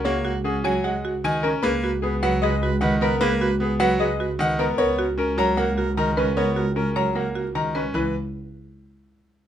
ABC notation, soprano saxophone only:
X:1
M:4/4
L:1/8
Q:1/4=152
K:B
V:1 name="Soprano saxophone"
F F F F F F F z | B B B B B B B B | B B B B B B B z | A A A A A A A A |
A A A A A A A z | z8 |]